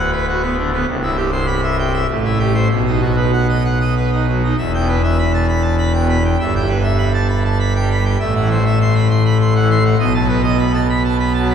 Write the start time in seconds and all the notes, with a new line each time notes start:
Already playing: D1 D2 F#5
0.12 B4
0.28 F#4
0.42 B3
0.57 D3
0.73 B3
0.87 C1 C2
1.03 E4
1.16 G4
1.32 C5
1.47 B5
1.63 E5
1.78 G5
1.93 E5
2.09 A1 A2
2.24 E4
2.39 G4
2.54 C5
2.70 B1 B2
2.87 D#4
3.02 F#4
3.17 B4
3.33 F#5
3.49 D#5
3.64 F#5
3.80 D#5
3.97 B4
4.13 D#4
4.29 F#3
4.44 D#4
4.58 E1 E2 E5
4.74 G5
4.79 B2
4.88 B4
5.03 E5
5.19 B5
5.34 A5
5.49 B5
5.62 A5
5.78 B5
5.93 G5
5.99 B2
6.09 B5
6.24 G5
6.40 G1 G2 E5
6.55 G3 G5
6.68 B4
6.83 E5
6.98 B5
7.14 A5
7.29 B5
7.45 A5
7.59 B5
7.75 G5
7.80 G3
7.91 B5
8.05 G5
8.20 A1 A2 E5
8.35 F#5
8.40 E3
8.50 C5
8.65 E5
8.81 C6
8.95 B5
9.10 C6
9.25 B5
9.41 C6
9.55 F#5
9.61 E3
9.71 C6
9.85 F#5
9.99 B1 B2 D#5
10.14 A5
10.18 F#3
10.28 B4
10.43 D#5
10.58 B5
10.74 A5
10.90 B5
11.05 A5
11.19 B5
11.34 A5
11.39 F#3
11.50 B5